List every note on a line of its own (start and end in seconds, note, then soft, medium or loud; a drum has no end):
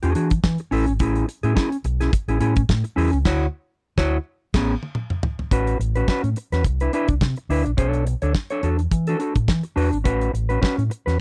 0.03 0.13 E2 medium
0.03 0.14 D4 medium
0.03 0.15 F#4 medium
0.03 0.15 G#4 medium
0.03 closed hi-hat soft
0.15 0.38 E3 medium
0.15 0.32 D4 medium
0.15 0.31 F#4 medium
0.15 0.30 G#4 medium
0.15 closed hi-hat medium
0.30 muted clean electric guitar stroke soft
0.30 kick loud
0.30 closed hi-hat soft
0.44 0.56 E3 loud
0.44 kick loud
0.44 snare loud
0.58 muted clean electric guitar stroke soft
0.58 closed hi-hat soft
0.71 0.84 A1 loud
0.71 0.92 C#4 medium
0.71 0.87 E4 loud
0.71 0.87 A4 medium
0.71 open hi-hat medium
0.87 0.97 G#1 medium
0.87 muted clean electric guitar stroke medium
0.87 closed hi-hat soft
0.99 1.22 A1 loud
0.99 1.26 C#4 medium
0.99 1.27 E4 medium
0.99 1.27 G#4 medium
0.99 kick loud
0.99 closed hi-hat medium
1.15 closed hi-hat soft
1.27 muted clean electric guitar stroke soft
1.27 closed hi-hat medium
1.43 1.54 A2 medium
1.43 1.54 C#4 medium
1.43 1.55 E4 medium
1.43 1.55 G#4 medium
1.43 closed hi-hat soft
1.55 1.76 C#4 medium
1.55 1.71 E4 medium
1.55 1.70 G#4 medium
1.55 kick loud
1.55 snare loud
1.72 muted clean electric guitar stroke soft
1.72 closed hi-hat soft
1.84 2.07 B1 medium
1.84 muted clean electric guitar stroke medium
1.84 closed hi-hat medium
2.00 2.12 C#4 medium
2.00 2.12 E4 medium
2.00 2.13 G#4 medium
2.00 snare soft
2.00 closed hi-hat soft
2.13 muted clean electric guitar stroke soft
2.13 kick loud
2.13 closed hi-hat medium
2.28 2.38 A1 medium
2.28 2.39 C#4 medium
2.28 2.39 E4 medium
2.28 2.40 G#4 medium
2.28 closed hi-hat soft
2.40 2.63 A2 medium
2.40 2.61 C#4 medium
2.40 2.56 E4 medium
2.40 2.55 G#4 medium
2.40 closed hi-hat medium
2.56 muted clean electric guitar stroke soft
2.56 kick loud
2.56 closed hi-hat soft
2.69 2.82 A2 loud
2.69 kick loud
2.69 snare loud
2.84 muted clean electric guitar stroke medium
2.84 closed hi-hat soft
2.96 3.10 E2 medium
2.96 3.17 C#4 medium
2.96 3.12 E4 medium
2.96 3.12 G#4 loud
2.96 open hi-hat medium
3.13 3.23 C#2 medium
3.13 muted clean electric guitar stroke medium
3.13 closed hi-hat soft
3.25 3.45 D2 loud
3.25 3.45 E4 loud
3.25 3.46 F#4 loud
3.25 3.46 C#5 loud
3.25 kick loud
3.25 snare loud
3.25 crash medium
3.98 4.16 D2 loud
3.98 4.17 E4 loud
3.98 4.17 F#4 loud
3.98 4.17 C#5 loud
3.98 kick loud
3.98 snare medium
4.54 4.73 A1 loud
4.54 4.74 B3 loud
4.54 4.73 C#4 loud
4.54 4.73 G#4 loud
4.54 kick loud
4.54 snare loud
4.54 crash medium
4.83 high tom medium
4.95 mid tom medium
5.10 mid tom medium
5.23 floor tom loud
5.39 floor tom medium
5.51 5.74 A1 loud
5.51 5.78 C#4 medium
5.51 5.78 F#4 medium
5.51 5.78 B4 medium
5.51 kick medium
5.51 closed hi-hat medium
5.67 closed hi-hat soft
5.79 6.02 A1 medium
5.79 muted clean electric guitar stroke soft
5.79 closed hi-hat medium
5.96 6.08 C#4 medium
5.96 6.08 F#4 medium
5.96 6.09 B4 medium
5.96 closed hi-hat soft
6.08 6.29 C#4 medium
6.08 6.24 F#4 medium
6.08 6.23 B4 medium
6.08 muted fingered electric bass stroke soft
6.08 kick loud
6.08 snare medium
6.24 6.34 A2 medium
6.24 muted clean electric guitar stroke soft
6.24 closed hi-hat soft
6.36 muted clean electric guitar stroke soft
6.36 closed hi-hat medium
6.52 6.62 E2 medium
6.52 6.65 C#4 medium
6.52 6.66 F#4 medium
6.52 6.65 B4 medium
6.52 snare soft
6.52 closed hi-hat soft
6.64 6.87 C2 medium
6.64 kick loud
6.64 closed hi-hat medium
6.80 6.92 D4 medium
6.80 6.93 E4 medium
6.80 6.93 B4 medium
6.80 closed hi-hat soft
6.93 7.13 D4 medium
6.93 7.10 E4 medium
6.93 7.09 B4 medium
6.93 closed hi-hat medium
7.08 7.19 C2 medium
7.08 muted clean electric guitar stroke soft
7.08 kick medium
7.08 closed hi-hat soft
7.21 7.34 C3 medium
7.21 kick loud
7.21 snare loud
7.36 muted clean electric guitar stroke soft
7.36 closed hi-hat soft
7.49 7.62 D2 medium
7.49 7.70 D4 medium
7.49 7.66 E4 medium
7.49 7.64 B4 medium
7.49 open hi-hat medium
7.65 7.76 A#1 medium
7.65 muted clean electric guitar stroke medium
7.65 closed hi-hat soft
7.77 8.13 B1 loud
7.77 7.88 C#4 medium
7.77 7.89 G#4 medium
7.77 7.89 C5 medium
7.77 kick loud
7.77 closed hi-hat medium
7.88 8.04 D4 medium
7.88 8.04 A4 medium
7.88 8.05 C#5 medium
7.93 closed hi-hat soft
8.06 muted clean electric guitar stroke soft
8.06 closed hi-hat medium
8.22 8.32 D2 medium
8.22 8.34 D4 medium
8.22 8.34 A4 medium
8.22 8.35 C#5 medium
8.22 closed hi-hat soft
8.35 kick loud
8.35 snare loud
8.50 8.62 D4 medium
8.50 8.63 A4 medium
8.50 8.69 C#5 medium
8.50 closed hi-hat soft
8.63 8.86 E2 medium
8.63 8.80 D4 medium
8.63 8.79 F#4 medium
8.63 8.78 A4 medium
8.63 closed hi-hat medium
8.79 muted clean electric guitar stroke soft
8.79 closed hi-hat soft
8.91 9.14 E3 loud
8.91 muted clean electric guitar stroke soft
8.91 kick loud
8.91 closed hi-hat medium
9.07 9.18 D4 medium
9.07 9.19 F#4 medium
9.07 9.20 A4 medium
9.07 closed hi-hat soft
9.19 9.36 D4 medium
9.19 9.35 F#4 soft
9.19 9.35 A4 medium
9.19 closed hi-hat medium
9.35 9.46 A2 medium
9.35 muted clean electric guitar stroke medium
9.35 kick medium
9.35 closed hi-hat soft
9.48 9.61 E3 loud
9.48 kick loud
9.48 snare loud
9.63 muted clean electric guitar stroke soft
9.63 closed hi-hat soft
9.76 9.89 E2 medium
9.76 9.97 D4 medium
9.76 9.92 F#4 medium
9.76 9.91 B4 medium
9.76 open hi-hat medium
9.92 10.03 G#1 medium
9.92 muted clean electric guitar stroke soft
9.92 closed hi-hat soft
10.04 10.28 A1 loud
10.04 10.31 C#4 medium
10.04 10.32 F#4 medium
10.04 10.32 B4 medium
10.04 kick loud
10.04 closed hi-hat medium
10.21 closed hi-hat soft
10.33 10.56 A1 medium
10.33 muted clean electric guitar stroke soft
10.33 closed hi-hat medium
10.49 10.60 C#4 medium
10.49 10.61 F#4 medium
10.49 10.62 B4 medium
10.49 closed hi-hat soft
10.61 10.82 C#4 medium
10.61 10.78 F#4 medium
10.61 10.77 B4 medium
10.61 muted fingered electric bass stroke soft
10.61 kick loud
10.61 snare medium
10.78 10.88 A2 medium
10.78 muted clean electric guitar stroke medium
10.78 closed hi-hat soft
10.90 muted clean electric guitar stroke soft
10.90 closed hi-hat medium
11.06 11.17 E2 medium
11.06 11.19 C#4 medium
11.06 11.20 F#4 soft
11.06 11.19 B4 medium
11.06 snare soft
11.06 closed hi-hat soft